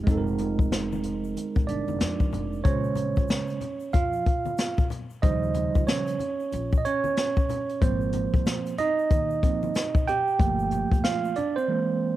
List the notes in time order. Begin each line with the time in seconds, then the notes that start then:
0.04 F1 G#3 C4, kick, closed hi-hat, shaker
0.09 D#4 A4
0.17 A#4
0.27 shaker
0.38 closed hi-hat, high conga, low conga, shaker
0.59 kick, shaker
0.72 snare, closed hi-hat, shaker
0.92 high conga, shaker
1.03 closed hi-hat, low conga, shaker
1.24 shaker
1.37 closed hi-hat, high conga, shaker
1.56 kick, high conga, shaker
1.67 G1 D4 D5, closed hi-hat, shaker
1.88 F1, high conga, shaker
2.00 F2, snare, closed hi-hat, shaker
2.20 kick, shaker
2.33 F1, closed hi-hat, low conga, shaker
2.53 shaker
2.64 A#1 C#3 G#3 C#4 C5 C#5, kick, closed hi-hat, shaker
2.84 shaker
2.95 closed hi-hat, low conga, shaker
3.16 C#2, kick, shaker
3.28 snare, closed hi-hat, shaker
3.47 closed hi-hat, shaker
3.61 closed hi-hat, low conga, shaker
3.80 shaker
3.93 F2 F4 F5, kick, closed hi-hat, high conga, shaker
4.13 shaker
4.26 kick, closed hi-hat, shaker
4.45 high conga, shaker
4.58 snare, closed hi-hat, shaker
4.78 kick, shaker
4.90 closed hi-hat, low conga, shaker
5.10 shaker
5.22 D#2 C#3 F3 G3 D#4 C5 D#5, kick, closed hi-hat, shaker
5.43 shaker
5.54 closed hi-hat, low conga, shaker
5.75 C#2, kick, shaker
5.87 C#4 C#5, snare, closed hi-hat, shaker
6.07 closed hi-hat, shaker
6.19 closed hi-hat, low conga, shaker
6.40 shaker
6.52 A#1, closed hi-hat, high conga, shaker
6.72 kick, shaker
6.78 D#5
6.85 C#4 C#5, closed hi-hat, shaker
7.04 high conga, shaker
7.17 snare, closed hi-hat, shaker
7.36 kick, shaker
7.49 closed hi-hat, low conga, shaker
7.69 closed hi-hat, shaker
7.81 G#1 F3 A#3 C4 C5, kick, closed hi-hat, shaker
8.01 shaker
8.12 closed hi-hat, low conga, shaker
8.34 C2, kick, shaker
8.46 snare, closed hi-hat, shaker
8.66 closed hi-hat, shaker
8.78 D#4 D#5, closed hi-hat, low conga, shaker
8.99 shaker
9.11 D#2, kick, closed hi-hat, high conga, shaker
9.30 shaker
9.43 F3 A#3 C4, kick, closed hi-hat, shaker
9.63 high conga, shaker
9.75 snare, closed hi-hat, shaker
9.95 kick, shaker
10.08 G4 G5, closed hi-hat, low conga, shaker
10.27 shaker
10.39 G1 F3 A3 A#3, kick, closed hi-hat, shaker
10.59 shaker
10.71 closed hi-hat, low conga, shaker
10.92 F1, kick, closed hi-hat, shaker
11.04 F4 F5, snare, closed hi-hat, shaker
11.25 shaker
11.35 D4 D5, closed hi-hat, low conga, shaker
11.56 C4 C5, shaker
11.68 E3 G#3 A#3